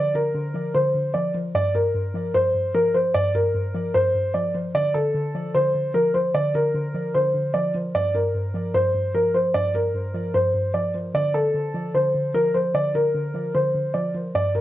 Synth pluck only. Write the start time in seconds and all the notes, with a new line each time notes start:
Already playing: D3 F3
0.14 D3
0.34 D3
0.54 F3
0.75 D3
0.94 D3
1.14 F3
1.34 F3
1.55 G2
1.74 G2
1.94 G2
2.14 F3
2.34 G2
2.54 G2
2.75 F3
2.94 F3
3.14 G2
3.34 G2
3.54 G2
3.74 F3
3.94 G2
4.14 G2
4.34 F3
4.54 F3
4.74 D3
4.94 D3
5.14 D3
5.34 F3
5.54 D3
5.75 D3
5.94 F3
6.14 F3
6.34 D3
6.54 D3
6.74 D3
6.94 F3
7.15 D3
7.34 D3
7.54 F3
7.74 F3
7.95 G2
8.14 G2
8.35 G2
8.54 F3
8.74 G2
8.94 G2
9.15 F3
9.34 F3
9.55 G2
9.74 G2
9.94 G2
10.14 F3
10.34 G2
10.54 G2
10.74 F3
10.94 F3
11.14 D3
11.34 D3
11.54 D3
11.74 F3
11.94 D3
12.14 D3
12.34 F3
12.54 F3
12.74 D3
12.94 D3
13.14 D3
13.34 F3
13.55 D3
13.74 D3
13.94 F3
14.14 F3
14.35 G2
14.54 G2